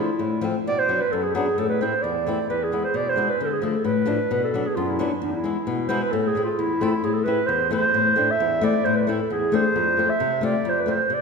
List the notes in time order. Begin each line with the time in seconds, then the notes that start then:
0.00 E4
0.19 A2
0.41 F3 A3 C4
0.67 B2 D5
0.78 C5
0.89 F#3 B3 D4
1.00 B4
1.12 F#2 A4
1.23 G#4
1.34 F#3 B3 D4 G#4
1.58 A2 A4
1.69 B4
1.81 A3 C4 E4 C5
2.02 E2 D5
2.27 A3 C4 E4
2.50 E2 B4
2.63 G#4
2.72 G#3 B3 E4
2.84 C5
2.94 B2 D5
3.09 C5
3.16 G#3 B3 E4
3.29 B4
3.40 D3 A4
3.52 G#4
3.62 F3 A3 D4 A4
3.85 A2 B4
4.06 F3 A3 D4
4.31 B2 B4
4.44 A4
4.54 F#3 B3 D4
4.66 G#4
4.75 F#2 F4
4.89 E4
4.99 F#3 B3 D4
5.10 D4
5.22 E2 E4
5.44 G#3 B3 E4
5.67 B2
5.88 G#3 B3 E4 C5
6.01 B4
6.12 A2 A4
6.27 G#4
6.35 A3 C4 E4
6.44 F4
6.58 E2 E4
6.81 A3 C4 E4 F4
6.91 E4
7.04 A2 G#4
7.13 A4
7.24 A3 C4 E4 B4
7.46 E2 C5
7.71 A3 C4 E4 C5
7.94 A2
8.16 A3 C4 D4
8.30 E5
8.40 E2
8.61 A3 C4 E4 D5
8.84 A2 C5
8.95 B4
9.07 A3 C4 E4 A4
9.30 E2 G#4
9.52 A3 C4 D4 C5
9.76 F2
9.97 A3 C4 F4
10.09 E5
10.20 C3
10.41 A3 C4 F4 D5
10.65 F2 C5
10.80 B4
10.86 A3 C4 F4
10.90 C5
11.10 C3 D5